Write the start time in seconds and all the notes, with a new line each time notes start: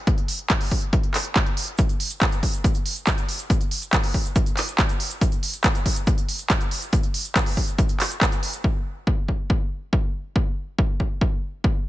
0.07 kick, closed hi-hat
0.18 closed hi-hat
0.28 open hi-hat
0.39 closed hi-hat
0.50 kick, clap, closed hi-hat
0.61 open hi-hat
0.71 kick, open hi-hat
0.82 closed hi-hat
0.93 kick, closed hi-hat
1.03 closed hi-hat
1.14 clap, open hi-hat
1.25 closed hi-hat
1.36 kick, clap, closed hi-hat
1.46 closed hi-hat
1.57 open hi-hat
1.68 closed hi-hat
1.78 kick, closed hi-hat, shaker
1.89 closed hi-hat, shaker
2.00 open hi-hat
2.10 closed hi-hat, shaker
2.21 kick, clap, closed hi-hat, shaker
2.32 closed hi-hat, shaker
2.43 kick, open hi-hat
2.54 closed hi-hat, shaker
2.64 kick, closed hi-hat, shaker
2.74 closed hi-hat, shaker
2.86 open hi-hat
2.96 closed hi-hat, shaker
3.07 kick, clap, closed hi-hat, shaker
3.18 closed hi-hat, shaker
3.29 open hi-hat
3.39 closed hi-hat, shaker
3.50 kick, closed hi-hat, shaker
3.61 closed hi-hat, shaker
3.71 open hi-hat
3.82 closed hi-hat, shaker
3.92 kick, clap, closed hi-hat, shaker
4.04 open hi-hat, shaker
4.14 kick, open hi-hat
4.25 closed hi-hat, shaker
4.35 kick, closed hi-hat, shaker
4.46 closed hi-hat, shaker
4.57 clap, open hi-hat
4.68 closed hi-hat, shaker
4.79 kick, clap, closed hi-hat, shaker
4.89 closed hi-hat, shaker
5.00 open hi-hat
5.10 closed hi-hat, shaker
5.21 kick, closed hi-hat, shaker
5.32 closed hi-hat, shaker
5.43 open hi-hat
5.54 closed hi-hat, shaker
5.64 kick, clap, closed hi-hat, shaker
5.75 closed hi-hat, shaker
5.86 kick, open hi-hat
5.96 closed hi-hat, shaker
6.07 kick, closed hi-hat, shaker
6.18 closed hi-hat, shaker
6.29 open hi-hat
6.38 closed hi-hat, shaker
6.50 kick, clap, closed hi-hat, shaker
6.61 closed hi-hat, shaker
6.71 open hi-hat
6.82 closed hi-hat, shaker
6.93 kick, closed hi-hat, shaker
7.03 closed hi-hat, shaker
7.14 open hi-hat
7.25 closed hi-hat, shaker
7.36 kick, clap, closed hi-hat, shaker
7.46 open hi-hat, shaker
7.57 kick, open hi-hat
7.68 closed hi-hat, shaker
7.78 kick, closed hi-hat, shaker
7.89 closed hi-hat, shaker
8.00 clap, open hi-hat
8.11 closed hi-hat, shaker
8.21 kick, clap, closed hi-hat, shaker
8.32 closed hi-hat, shaker
8.43 open hi-hat
8.53 closed hi-hat, shaker
8.64 kick
9.07 kick
9.28 kick
9.50 kick
9.93 kick
10.36 kick
10.78 kick
11.00 kick
11.21 kick
11.64 kick